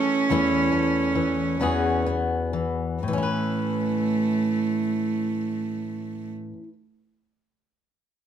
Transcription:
Already playing: steel-string acoustic guitar E3 A3 C#4 A4, cello C#4
0.30 steel-string acoustic guitar E2 E3 A3 E4 A4
0.72 steel-string acoustic guitar A3
1.15 steel-string acoustic guitar E3
1.60 steel-string acoustic guitar E2 E3 B3 F#4 G#4
2.06 steel-string acoustic guitar B3
2.53 steel-string acoustic guitar E3
3.03 steel-string acoustic guitar A2, cello A3
3.08 steel-string acoustic guitar E3
3.13 steel-string acoustic guitar C#4
3.18 steel-string acoustic guitar E4
3.23 steel-string acoustic guitar B4

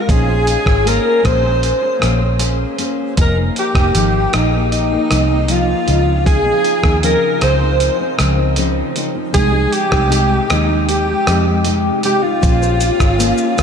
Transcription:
0.01 alto saxophone A#4
0.09 fingered electric bass A#1, steel-string acoustic guitar A#3 C#4 G#4 C5, alto saxophone G#4, kick, closed hi-hat
0.28 steel-string acoustic guitar C#4 G#4 C5
0.47 closed hi-hat
0.66 fingered electric bass G#1, steel-string acoustic guitar C#4 G#4 C5, kick, cross-stick
0.85 steel-string acoustic guitar A#3 C#4 G#4 C5, alto saxophone A#4, closed hi-hat
1.23 fingered electric bass A#1, steel-string acoustic guitar A#3 C#4 G#4 C5, alto saxophone C5, kick, cross-stick, closed hi-hat
1.43 steel-string acoustic guitar C#4 G#4 C5
1.63 closed hi-hat
1.81 steel-string acoustic guitar C#4 G#4 C5
1.99 fingered electric bass A#1, steel-string acoustic guitar A#3 C#4 G#4 C5, cross-stick, closed hi-hat
2.19 steel-string acoustic guitar C#4 G#4 C5
2.39 steel-string acoustic guitar A#3 C#4 G#4 C5, closed hi-hat
2.78 steel-string acoustic guitar A#3 C#4 G#4 C5, closed hi-hat
3.17 fingered electric bass F1, steel-string acoustic guitar F3 A#3 D#4 G#4, kick, closed hi-hat
3.21 alto saxophone A#4
3.36 steel-string acoustic guitar A#3 D#4 G#4
3.56 alto saxophone G4, closed hi-hat
3.75 fingered electric bass F1, steel-string acoustic guitar A#3 D#4 G#4, kick, cross-stick
3.95 fingered electric bass G#1, steel-string acoustic guitar F3 A#3 D#4, closed hi-hat
4.33 fingered electric bass A#1, steel-string acoustic guitar F3 A#3 D#4 G#4, alto saxophone D#4, cross-stick, closed hi-hat
4.52 steel-string acoustic guitar A#3 D#4 G#4
4.72 alto saxophone D#4, closed hi-hat
4.90 steel-string acoustic guitar A#3 D#4 G#4
5.09 fingered electric bass C2, steel-string acoustic guitar F3 A#3 D#4 G#4, cross-stick, closed hi-hat
5.29 steel-string acoustic guitar A#3 D#4 G#4
5.47 steel-string acoustic guitar F3 A#3 D#4 G#4, alto saxophone F4, closed hi-hat
5.87 fingered electric bass C#2, steel-string acoustic guitar C#3 F3 C4 D#4, closed hi-hat
6.25 steel-string acoustic guitar C#3 F3 C4 D#4, alto saxophone G#4, kick, closed hi-hat
6.43 steel-string acoustic guitar F3 C4 D#4
6.64 closed hi-hat
6.83 fingered electric bass D#2, steel-string acoustic guitar F3 C4 D#4, kick, cross-stick
7.02 steel-string acoustic guitar C#3 F3 C4 D#4, alto saxophone A#4, closed hi-hat
7.41 fingered electric bass C#2, steel-string acoustic guitar C#3 F3 C4 D#4, alto saxophone C5, cross-stick, closed hi-hat
7.61 steel-string acoustic guitar F3 C4 D#4
7.80 closed hi-hat
8.00 steel-string acoustic guitar F3 C4 D#4
8.18 fingered electric bass C#2, steel-string acoustic guitar C#3 F3 C4 D#4, cross-stick, closed hi-hat
8.37 steel-string acoustic guitar F3 C4 D#4
8.56 steel-string acoustic guitar C#3 F3 C4 D#4, closed hi-hat
8.95 steel-string acoustic guitar C#3 F3 C4 D#4, closed hi-hat
9.15 steel-string acoustic guitar F3 C4 D#4
9.33 fingered electric bass C2, steel-string acoustic guitar C3 G#3 D#4 G4, alto saxophone G#4, kick, closed hi-hat
9.51 steel-string acoustic guitar G#3 D#4 G4
9.72 alto saxophone G4, closed hi-hat
9.91 fingered electric bass C2, steel-string acoustic guitar G#3 D#4 G4, kick, cross-stick
10.09 steel-string acoustic guitar C3 G#3 D#4 G4, closed hi-hat
10.47 fingered electric bass D#2, steel-string acoustic guitar C3 G#3 D#4 G4, alto saxophone D#4, cross-stick, closed hi-hat
10.67 steel-string acoustic guitar G#3 D#4 G4
10.89 alto saxophone G4, closed hi-hat
11.08 steel-string acoustic guitar G#3 D#4 G4
11.27 fingered electric bass F2, steel-string acoustic guitar C3 G#3 D#4 G4, cross-stick, closed hi-hat
11.46 steel-string acoustic guitar G#3 D#4 G4
11.65 steel-string acoustic guitar C3 G#3 D#4 G4, closed hi-hat
12.03 steel-string acoustic guitar C3 G#3 D#4 G4, alto saxophone G4, closed hi-hat
12.23 steel-string acoustic guitar G#3 D#4 G4, alto saxophone F4
12.41 fingered electric bass A#1, steel-string acoustic guitar A#3 C#4 G#4 C5, kick, closed hi-hat, shaker
12.62 steel-string acoustic guitar C#4 G#4 C5, shaker
12.81 closed hi-hat, shaker
12.99 fingered electric bass G#1, steel-string acoustic guitar C#4 G#4 C5, kick, cross-stick, shaker
13.18 steel-string acoustic guitar A#3 C#4 G#4 C5, closed hi-hat, shaker
13.38 shaker
13.57 fingered electric bass A#1, steel-string acoustic guitar A#3 C#4 G#4 C5, kick, cross-stick, closed hi-hat, shaker

